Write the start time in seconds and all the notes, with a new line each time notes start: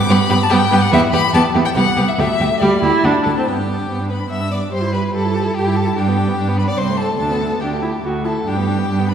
Already playing: D6
0.09 G2 B3 G4 B5
0.29 G2 B3 G4
0.43 A5
0.50 G2 B3 G4 G5
0.71 G2 B3 G4
0.82 F#5
0.91 E2 B3 G4 E5
1.13 E2 B3 G4 B5
1.34 E2 B3 G4 A5
1.55 E2 B3 G4
1.65 G5
1.75 C2 B3 G4 F#5
1.96 C2 B3 G4
2.08 E5
2.17 D2 A3 G4 E5
2.40 D2 A3 G4
2.60 D2 G3 G4 D5
2.83 D2 E4 G4
3.04 D2 D4 F#4
3.23 D2 A4 A5
3.38 C4
3.46 G2 B3 G4 G5
3.58 D4
3.68 B3
3.79 D4
3.89 G2 B3
4.00 D4
4.09 B3 B4 B5
4.19 D4
4.29 G2 B3 E5 E6
4.40 D4
4.50 B3 D5 D6
4.61 D4
4.71 G2 G4 C5 C6
4.82 E4
4.93 G4 B4 B5
5.02 E4
5.13 G2 G4 A4 A5
5.24 E4
5.34 G4
5.44 E4
5.54 G2 G4 G5
5.67 E4
5.75 G4 A4 A5
5.86 E4
5.96 G2 D4 G4 G5
6.08 B3
6.17 D4
6.28 B3
6.36 G2 D4
6.48 B3
6.57 D4 B4 B5
6.68 B3 D5 D6
6.77 C2 C4 C5 C6
6.89 A3
6.97 C4 A4 A5
7.10 A3
7.18 D2 D4 A4 A5
7.31 B3
7.41 D4
7.51 B3
7.60 D2 D4 G4 G5
7.82 E4
8.04 D2 F#4
8.24 E4 A4 A5
8.46 G2 D4 G4 G5
8.57 B3
8.68 D4
8.78 B3
8.88 G2 D4
8.99 B3
9.09 D4 B4 B5